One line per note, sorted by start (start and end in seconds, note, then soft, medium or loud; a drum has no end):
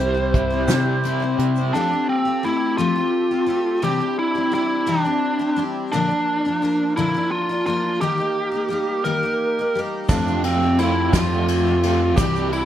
0.00 0.65 C2 loud
0.00 1.39 C3 medium
0.00 0.16 G3 medium
0.00 0.16 C4 medium
0.00 1.71 C4 medium
0.00 0.16 E4 medium
0.00 1.72 E4 medium
0.00 1.71 G4 medium
0.00 1.36 C5 medium
0.00 1.72 C5 medium
0.00 0.13 C5 medium
0.14 0.52 C4 soft
0.14 0.51 E4 soft
0.14 0.49 C5 medium
0.34 1.02 E4 medium
0.34 kick medium
0.34 closed hi-hat medium
0.50 0.68 C4 soft
0.50 0.69 E4 soft
0.50 0.69 C5 medium
0.68 1.03 C3 medium
0.68 1.34 C3 medium
0.68 1.02 G3 medium
0.68 1.04 C4 medium
0.68 1.04 E4 medium
0.68 1.05 C5 medium
0.68 snare loud
0.68 closed hi-hat medium
0.68 shaker medium
1.04 1.21 G3 medium
1.04 1.22 C4 medium
1.04 1.21 E4 medium
1.04 1.19 C5 medium
1.04 closed hi-hat medium
1.20 1.58 C4 medium
1.20 1.57 E4 medium
1.20 1.56 C5 medium
1.38 1.71 C3 medium
1.38 1.73 C4 medium
1.38 closed hi-hat medium
1.56 1.75 E4 soft
1.56 1.75 C5 medium
1.56 shaker soft
1.61 1.74 C4 soft
1.73 3.81 F3 medium
1.73 1.92 F3 medium
1.73 1.92 A3 medium
1.73 3.81 C4 medium
1.73 1.92 C4 medium
1.73 2.06 D4 medium
1.73 1.92 F4 medium
1.73 3.81 G4 medium
1.73 3.81 A4 medium
1.77 1.90 G4 loud
1.91 2.27 C4 soft
1.91 2.26 F4 soft
1.91 2.24 G4 medium
2.09 2.45 C4 medium
2.25 2.43 C4 soft
2.25 2.44 F4 soft
2.25 2.43 G4 medium
2.43 2.78 A3 medium
2.43 2.79 C4 medium
2.43 2.77 E4 medium
2.43 2.79 G4 medium
2.78 2.96 F3 medium
2.78 2.96 A3 medium
2.78 2.97 C4 medium
2.78 3.83 F4 loud
2.78 2.97 F4 medium
2.78 2.94 G4 loud
2.96 3.31 F4 medium
2.96 3.30 G4 medium
3.00 3.32 C4 medium
3.31 3.46 C4 soft
3.31 3.47 F4 medium
3.31 3.48 G4 medium
3.46 3.82 A3 medium
3.46 3.83 C4 medium
3.46 3.83 F4 medium
3.46 3.83 G4 medium
3.82 4.00 C3 medium
3.82 4.00 E3 medium
3.82 4.00 G3 medium
3.82 5.90 C4 medium
3.82 4.01 C4 medium
3.82 5.90 D4 medium
3.82 4.00 D4 medium
3.82 5.90 E4 medium
3.82 5.90 G4 medium
3.82 4.16 G4 loud
3.82 3.99 G4 loud
4.00 4.37 G3 soft
4.00 4.36 C4 soft
4.00 4.34 D4 medium
4.00 4.34 G4 medium
4.19 4.53 E4 medium
4.35 4.50 G3 soft
4.35 4.52 C4 soft
4.35 4.53 D4 medium
4.35 4.53 G4 medium
4.52 4.86 G3 medium
4.52 4.87 C4 medium
4.52 4.87 D4 medium
4.52 4.89 E4 medium
4.52 4.87 G4 medium
4.86 5.05 C3 medium
4.86 5.05 E3 medium
4.86 5.05 G3 medium
4.86 5.05 C4 medium
4.86 5.62 D4 medium
4.86 5.04 D4 medium
4.86 5.03 G4 medium
5.05 5.40 G3 medium
5.05 5.40 C4 medium
5.05 5.39 D4 medium
5.05 5.38 G4 medium
5.39 5.55 G3 medium
5.39 5.56 C4 medium
5.39 5.57 D4 medium
5.39 5.57 G4 medium
5.56 5.92 G3 medium
5.56 5.92 C4 medium
5.56 5.93 D4 medium
5.56 5.93 G4 medium
5.92 6.10 A#2 medium
5.92 6.10 D3 loud
5.92 7.99 F3 medium
5.92 6.10 F3 medium
5.92 7.99 A#3 medium
5.92 6.10 A#3 loud
5.92 6.93 D4 loud
5.92 7.99 D4 medium
5.92 6.09 D4 medium
5.92 7.99 A#4 medium
5.92 6.08 A#4 medium
6.09 6.46 F3 soft
6.09 6.45 A#3 soft
6.09 6.45 D4 medium
6.09 6.44 A#4 medium
6.45 6.61 F3 soft
6.45 6.62 A#3 soft
6.45 6.63 D4 medium
6.45 6.62 A#4 medium
6.62 6.97 F3 medium
6.62 6.97 A#3 medium
6.62 6.97 D4 medium
6.62 6.98 A#4 medium
6.97 7.14 A#2 medium
6.97 7.14 D3 medium
6.97 7.15 F3 medium
6.97 7.15 A#3 medium
6.97 7.15 D4 medium
6.97 7.29 E4 loud
6.97 7.13 A#4 medium
7.14 7.51 F3 medium
7.14 7.50 A#3 medium
7.14 7.50 D4 medium
7.14 7.48 A#4 medium
7.31 7.65 F4 loud
7.49 7.65 F3 soft
7.49 7.66 A#3 soft
7.49 7.67 D4 medium
7.49 7.66 A#4 medium
7.66 8.01 F3 medium
7.66 8.02 A#3 medium
7.66 8.02 D4 medium
7.66 8.01 F4 medium
7.66 8.03 A#4 medium
8.01 8.18 D#3 medium
8.01 8.19 G3 medium
8.01 10.08 A#3 medium
8.01 8.19 A#3 medium
8.01 10.08 D#4 loud
8.01 8.19 D#4 medium
8.01 9.08 G4 loud
8.01 10.08 G4 medium
8.01 8.17 G4 loud
8.01 10.08 A#4 medium
8.18 8.54 A#3 medium
8.18 8.53 D#4 medium
8.18 8.50 G4 medium
8.52 8.69 A#3 soft
8.52 8.70 D#4 soft
8.52 8.70 G4 medium
8.69 9.04 G3 medium
8.69 9.05 A#3 medium
8.69 9.05 D#4 medium
8.73 9.06 G4 medium
9.04 9.22 D#3 medium
9.04 9.23 G3 medium
9.04 9.23 A#3 medium
9.04 9.23 D#4 medium
9.04 9.22 G4 medium
9.04 9.79 A#4 loud
9.23 9.59 A#3 soft
9.23 9.59 D#4 medium
9.23 9.58 G4 medium
9.59 9.75 A#3 soft
9.59 9.76 D#4 medium
9.59 9.76 G4 medium
9.75 10.10 G3 medium
9.75 10.10 A#3 medium
9.75 10.11 D#4 medium
9.75 10.11 G4 medium
10.09 10.79 F2 loud
10.09 11.10 F2 loud
10.09 10.79 C3 loud
10.09 12.16 F3 medium
10.09 10.27 F3 medium
10.09 10.27 A3 medium
10.09 12.15 C4 medium
10.09 10.28 C4 medium
10.09 10.42 D4 medium
10.09 10.28 F4 medium
10.09 12.16 G4 medium
10.09 10.27 G4 medium
10.09 12.16 A4 medium
10.09 kick loud
10.09 crash loud
10.09 shaker medium
10.27 10.63 F4 soft
10.27 10.62 G4 medium
10.27 shaker soft
10.32 10.64 C4 soft
10.44 10.79 A3 medium
10.44 10.80 C4 medium
10.44 10.81 F4 medium
10.44 ride medium
10.48 10.77 F3 medium
10.63 10.79 C4 soft
10.63 10.80 F4 soft
10.63 10.80 G4 medium
10.78 11.15 F3 medium
10.78 11.14 A3 medium
10.78 11.14 C4 medium
10.78 11.13 E4 medium
10.78 ride medium
10.82 11.12 F4 medium
10.82 11.16 G4 medium
11.13 12.18 F2 loud
11.13 12.18 F2 medium
11.13 12.15 C3 medium
11.13 11.31 F3 medium
11.13 11.32 A3 medium
11.13 11.32 C4 medium
11.13 12.14 F4 loud
11.13 11.31 F4 medium
11.13 11.30 G4 medium
11.13 kick medium
11.13 snare loud
11.13 ride medium
11.13 shaker loud
11.31 11.68 C4 soft
11.31 11.67 F4 medium
11.31 11.66 G4 medium
11.48 ride medium
11.48 shaker soft
11.67 11.84 C4 soft
11.67 11.84 F4 soft
11.67 11.84 G4 medium
11.83 12.17 F3 medium
11.83 12.18 A3 medium
11.83 12.19 C4 medium
11.83 12.19 F4 medium
11.83 12.19 G4 medium
11.83 ride medium
12.17 12.65 C2 loud
12.17 12.35 C3 medium
12.17 12.36 E3 medium
12.17 12.36 G3 medium
12.17 12.65 C4 medium
12.17 12.36 C4 medium
12.17 12.65 D4 medium
12.17 12.36 D4 loud
12.17 12.65 E4 medium
12.17 12.51 E4 loud
12.17 12.49 G4 loud
12.17 12.65 G4 medium
12.17 12.35 G4 medium
12.17 kick loud
12.17 ride medium
12.17 shaker loud
12.36 12.65 G3 medium
12.36 12.65 C4 medium
12.36 12.65 D4 medium
12.36 12.65 G4 medium
12.36 shaker soft
12.52 12.65 G3 medium
12.52 12.65 C4 medium
12.52 12.65 E4 medium
12.52 ride medium